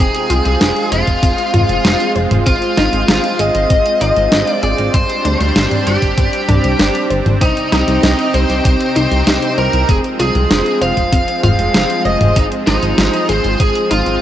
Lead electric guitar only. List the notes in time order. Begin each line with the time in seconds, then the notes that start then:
0.00 G#4
0.46 G#4
0.92 F4
2.47 F4
2.77 F4
3.39 D#5
4.01 D#5
4.46 D5
4.63 D5
4.94 C5
5.40 C5
5.87 G4
7.41 D#4
7.72 D#4
8.34 C5
8.96 C5
9.58 A#4
9.89 G#4
10.20 G#4
10.82 F5
11.43 F5
12.05 D#5
12.36 D#4
12.67 D#4
13.29 C5
13.60 G#4
13.91 F4